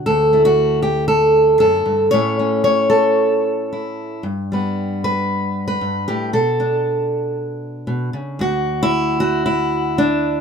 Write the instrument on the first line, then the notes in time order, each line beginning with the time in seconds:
steel-string acoustic guitar
Already playing: D3 A3
0.06 D2 A4
0.33 A3 E4
0.45 F#4
0.82 G4
1.08 A4
1.60 F#2 A4
1.86 G2
2.11 A2 A3 C#4 C#5
2.39 C#4
2.64 C#5
2.90 A4
3.73 E4
4.23 G2
4.52 G3 B3 B4
5.04 B4
5.68 B4
5.81 G2
6.08 A2 G4
6.33 B2 A4
6.60 D4
7.87 B2
8.13 C#3
8.39 D2 F#4
8.83 E4
9.20 F#4
9.46 E4
9.98 D4